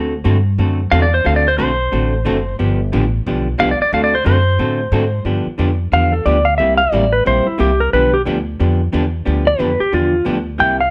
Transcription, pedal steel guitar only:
0.92 F5
1.02 D5
1.14 C5
1.26 F5
1.36 D5
1.48 C5
1.58 C5
3.60 F5
3.71 D5
3.82 D5
3.94 F5
4.04 D5
4.15 C5
4.27 C5

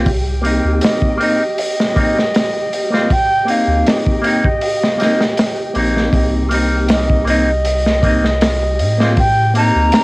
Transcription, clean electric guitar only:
0.41 A#3 C4
0.46 D#4
1.17 A#3 C4
1.22 D#4
1.94 A#3 C4
1.99 D#4
2.90 A#3 C4
2.94 F4
3.45 A#3 C4
3.50 D#4
4.22 A#3 C4
4.26 D#4
4.97 A#3 C4
5.02 D#4
5.74 A#3 C4
5.78 D#4
6.49 A#3 C4
6.54 D#4
7.25 A#3 C4
7.30 D#4
8.02 A#3 C4
8.06 D#4
8.98 A#3 C4
9.03 F4
9.54 A#3 C4
9.59 D#4

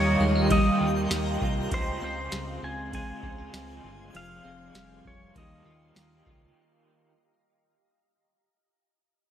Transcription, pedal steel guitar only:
Already playing: C#5
0.52 D#5
1.74 C5
2.04 C5
2.64 G#5
2.95 G#5
4.17 F5
5.07 C#5
5.38 D#5

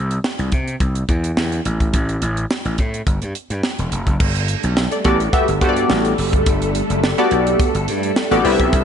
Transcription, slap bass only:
Already playing: C2
0.39 C2
0.52 C3
0.80 C2
1.09 E2
1.37 E2
1.65 A1
1.94 A1
2.22 A1
2.65 A1
2.79 A2
3.07 G1
3.22 G2
3.50 G2
3.79 E1
3.92 F1
4.07 F#1
4.20 G1
4.64 B1
5.05 A1
5.49 G1
5.61 G2
5.90 A1
6.18 F#1
6.47 G1
6.90 F#1
7.31 B1
7.75 G1
7.88 G2
8.31 A1
8.45 C2
8.60 B1
8.73 C2

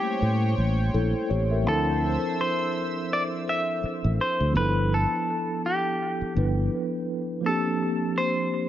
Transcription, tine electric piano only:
Already playing: G3 A3 A#3 C#4 E4
0.94 E4 A4
1.30 G4 C#5
1.51 A#4 E5
1.62 F3 C4 D4
1.68 E4 A4
4.52 F3 B3 D4
4.57 E4 A4
6.34 F3 B3 D4 E4 B4
7.41 F3 A#3 C4
7.46 D4 G4

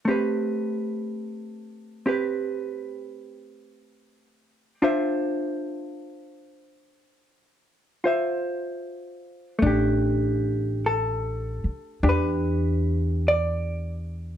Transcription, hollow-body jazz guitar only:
0.05 A3 C4 G4
0.11 B4
2.06 C4 G4 B4
4.82 D4 F4 C5 E5
8.04 F4 C5 E5
9.59 A3 D4
9.67 G4
10.86 A4
12.03 D4 G4
12.09 B4
13.28 D5

